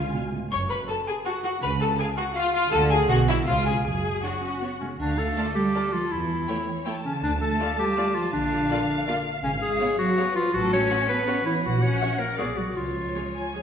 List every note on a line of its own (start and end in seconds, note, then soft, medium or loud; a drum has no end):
0.00 0.31 C#2 soft
0.00 0.14 C#3 soft
0.00 0.14 F4 medium
0.00 0.12 F5 soft
0.00 0.31 G#5 medium
0.14 0.21 B2 medium
0.32 0.40 A2 soft
0.51 0.83 F#1 medium
0.51 0.83 F#2 medium
0.51 0.59 C#5 medium
0.51 0.69 C#6 medium
0.51 0.60 C#6 medium
0.70 0.78 B4 medium
0.70 0.87 B5 medium
0.70 0.78 B5 soft
0.88 0.96 A4 medium
0.88 1.06 A5 medium
0.88 0.96 A5 medium
0.88 0.97 A5 soft
1.07 1.15 G#4 medium
1.07 1.25 G#5 medium
1.07 1.15 G#5 soft
1.26 1.33 F#4 medium
1.26 1.43 F#5 medium
1.26 1.34 A5 soft
1.44 1.51 F#4 medium
1.44 1.63 F#5 medium
1.44 1.62 F#5 medium
1.62 1.93 C#2 medium
1.62 1.93 C#3 medium
1.62 1.70 B4 medium
1.62 1.81 B5 medium
1.62 1.80 B5 medium
1.81 1.88 A4 medium
1.81 2.00 A5 medium
1.81 1.99 A5 medium
1.98 2.06 G#4 medium
1.98 2.07 F5 soft
1.98 2.07 G#5 medium
1.98 2.17 G#5 medium
2.17 2.24 F#4 medium
2.17 2.36 F#5 medium
2.17 2.35 F#5 medium
2.36 2.53 F4 medium
2.36 2.44 F5 medium
2.36 2.53 F5 medium
2.54 2.72 F4 medium
2.54 2.71 F5 medium
2.54 2.72 F5 medium
2.72 3.03 D2 medium
2.72 3.04 D3 medium
2.72 2.79 A4 medium
2.72 2.81 F#5 medium
2.72 2.90 A5 medium
2.72 2.91 A5 medium
2.90 3.09 G#4 medium
2.90 3.08 G#5 medium
2.90 2.98 G#5 medium
3.09 3.41 B1 medium
3.09 3.41 B2 medium
3.09 3.17 F#4 medium
3.09 3.17 F#5 medium
3.09 3.27 F#5 medium
3.09 3.18 G#5 medium
3.28 3.36 E4 medium
3.28 3.36 E5 medium
3.28 3.46 E5 medium
3.46 3.79 C#2 medium
3.46 3.79 C#3 medium
3.46 3.65 F4 medium
3.46 3.56 C#5 soft
3.46 3.55 F5 medium
3.46 3.65 F5 medium
3.65 3.73 G#4 medium
3.65 3.83 G#5 medium
3.65 3.84 G#5 medium
3.84 4.17 F#1 medium
3.84 4.17 F#2 soft
3.84 4.23 G#4 medium
3.84 4.22 G#5 medium
3.84 4.21 G#5 medium
4.23 4.31 D4 medium
4.23 4.80 F#4 soft
4.23 4.32 C#5 soft
4.23 4.80 F#5 soft
4.23 4.77 F#5 soft
4.42 4.61 C#4 soft
4.61 4.69 B3 soft
4.61 4.70 C#5 soft
4.80 4.98 C#3 soft
4.80 4.88 A3 soft
4.80 4.89 C#4 soft
4.99 5.31 D2 soft
4.99 5.18 D3 medium
4.99 5.20 D4 medium
4.99 5.35 F5 medium
4.99 triangle soft
5.18 5.55 A3 medium
5.18 5.54 A4 medium
5.37 5.46 A3 soft
5.37 5.46 F4 soft
5.37 6.49 A4 soft
5.37 5.45 D5 soft
5.37 5.45 A5 soft
5.55 5.93 G3 medium
5.55 5.95 G4 medium
5.74 5.83 A3 soft
5.74 5.84 F4 soft
5.74 5.82 D5 soft
5.74 5.82 A5 soft
5.93 6.00 F3 medium
5.93 6.13 F4 medium
6.12 6.42 E2 medium
6.12 6.84 E3 medium
6.12 6.86 E4 medium
6.49 6.57 A3 soft
6.49 6.57 E4 soft
6.49 6.86 C#5 soft
6.49 6.57 C#5 soft
6.49 6.57 G5 soft
6.85 6.94 A3 soft
6.85 6.94 E4 soft
6.85 6.94 C#5 soft
6.85 6.93 G5 soft
6.85 8.35 A5 medium
7.04 7.22 C#3 medium
7.04 7.13 C#4 medium
7.23 7.54 D2 medium
7.23 7.41 D3 medium
7.23 7.32 D4 medium
7.41 7.78 A3 medium
7.41 7.78 A4 medium
7.59 7.68 A3 soft
7.59 7.67 F4 soft
7.59 7.68 D5 soft
7.59 7.68 F5 soft
7.78 8.15 G3 medium
7.78 8.16 G4 medium
7.96 8.05 A3 soft
7.96 8.06 F4 soft
7.96 8.05 D5 soft
7.96 8.04 F5 soft
8.15 8.22 F3 medium
8.15 8.32 F4 medium
8.33 8.64 A#1 medium
8.33 9.06 D3 medium
8.33 9.05 D4 medium
8.33 9.42 F5 medium
8.70 8.79 A#3 soft
8.70 8.79 F4 medium
8.70 8.78 D5 soft
8.70 8.78 F5 medium
9.07 9.15 A#3 medium
9.07 9.15 F4 medium
9.07 9.15 D5 soft
9.07 9.15 F5 medium
9.43 9.74 G#1 medium
9.43 9.51 C#3 medium
9.43 9.52 C#4 medium
9.43 9.80 F5 medium
9.62 9.98 G#3 medium
9.62 9.98 G#4 medium
9.80 9.88 B3 medium
9.80 9.88 G#4 medium
9.80 9.88 C#5 medium
9.80 10.17 C#5 medium
9.80 9.88 F5 medium
9.98 10.35 F#3 medium
9.98 10.35 F#4 medium
10.16 10.26 B3 medium
10.16 10.26 G#4 medium
10.16 10.53 B4 medium
10.16 10.24 C#5 medium
10.16 10.25 F5 medium
10.35 10.53 F3 medium
10.35 10.53 F4 medium
10.54 10.84 A1 medium
10.54 10.72 F#3 medium
10.54 10.72 F#4 medium
10.54 10.90 A4 medium
10.72 11.09 C#4 medium
10.72 11.08 C#5 medium
10.90 10.99 C#4 soft
10.90 10.99 F#4 medium
10.90 11.26 A4 medium
10.90 10.98 C#5 soft
10.90 10.98 F#5 medium
11.08 11.45 B3 medium
11.08 11.45 B4 medium
11.27 11.35 C#4 medium
11.27 11.35 F#4 medium
11.27 11.35 C#5 medium
11.27 11.64 C#5 medium
11.27 11.35 F#5 medium
11.45 11.63 E3 medium
11.45 11.54 E4 medium
11.63 11.94 A#1 medium
11.63 11.82 F#3 medium
11.63 11.84 F#4 medium
11.63 12.37 F#5 medium
11.82 12.19 C#4 medium
11.82 12.21 C#5 medium
12.01 12.09 C#4 soft
12.01 12.09 F#4 soft
12.01 12.09 E5 soft
12.01 12.09 F#5 soft
12.19 12.27 A#3 medium
12.19 12.38 A#4 medium
12.37 12.70 B1 soft
12.37 12.46 G#3 medium
12.37 12.47 B3 soft
12.37 12.47 F#4 soft
12.37 12.59 G#4 medium
12.37 12.45 D5 soft
12.37 12.77 D5 medium
12.37 12.45 F#5 soft
12.57 12.65 F#3 soft
12.57 12.76 F#4 medium
12.76 13.08 C#2 soft
12.76 13.52 F3 soft
12.76 13.52 F4 medium
12.76 13.62 C#5 soft
13.15 13.23 G#3 soft
13.15 13.23 G#4 soft
13.15 13.22 C#5 soft
13.35 13.62 G#5 soft
13.54 13.62 G#3 soft
13.54 13.62 G#4 soft